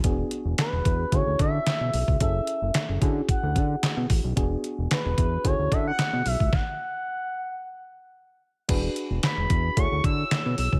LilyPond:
<<
  \new Staff \with { instrumentName = "Analog synth lead" } { \time 4/4 \key d \lydian \tempo 4 = 111 r4 b'4 cis''8 e''4. | e''4. r8 fis''4. r8 | r4 b'4 cis''8 e''16 fis''8. e''8 | fis''2.~ fis''8 r8 |
r4 b''4 cis'''8 e'''4 e'''8 | }
  \new Staff \with { instrumentName = "FM electric piano" } { \time 4/4 \key d \lydian <b d' fis' gis'>2 <cis' e' fis' gis'>2 | <cis' e' gis' a'>4. <cis' e' fis' gis'>2~ <cis' e' fis' gis'>8 | <b d' fis' gis'>2 <cis' e' fis' gis'>2 | r1 |
<d' fis' gis' b'>2 <e' fis' gis' cis''>2 | }
  \new Staff \with { instrumentName = "Analog synth bass" } { \clef bass \time 4/4 \key d \lydian e,,8 r16 e,,16 r16 e,,16 e,8 d,16 d,16 d8 r16 b,16 b,,16 cis,16 | fis,,8 r16 fis,,16 r16 fis,,16 d8 r16 d,16 d8 r16 b,16 a,,16 b,,16 | e,,8 r16 e,,16 r16 e,,16 e,8 d,16 d,16 d8 r16 b,16 b,,16 cis,16 | r1 |
e,,8 r16 e,,16 r16 e,,16 e,8 d,16 d,16 d8 r16 b,16 b,,16 cis,16 | }
  \new DrumStaff \with { instrumentName = "Drums" } \drummode { \time 4/4 <hh bd>8 hh8 <hc hh sn>8 <hh bd>8 <hh bd>8 <hh bd>8 <hc hh sn>8 hho16 bd16 | <hh bd>8 hh8 <hc hh sn>8 <hh bd>8 <hh bd>8 <hh bd>8 <hc hh sn>8 <hho bd>8 | <hh bd>8 hh8 <hc hh sn>8 <hh bd>8 <hh bd>8 <hh bd>8 <hc hh sn>8 hho16 bd16 | <bd sn>4 r4 r4 r4 |
<cymc hh bd>8 hh8 <hc hh sn>8 <hh bd>8 <hh bd>8 <hh bd>8 <hc hh sn>8 hho16 bd16 | }
>>